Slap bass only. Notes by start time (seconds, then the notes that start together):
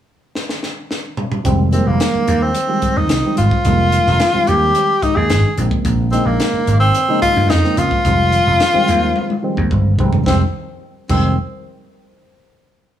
1.45 F1
1.87 F1
2.15 muted slap bass stroke
2.28 D#2
2.97 D#2
3.10 C2
3.38 G#1
3.65 F1
4.07 F1
4.35 muted slap bass stroke
4.48 D#2
5.16 D#2
5.30 G#1
5.58 A#1
5.85 A#1
6.26 A#1
6.53 muted slap bass stroke
6.67 G#1
7.37 G2
7.50 F2
7.77 C#2
8.05 F1
8.47 F1
8.75 muted slap bass stroke
8.88 D#2
9.57 D#2
9.71 G1
9.99 F1
10.26 F1
11.09 F1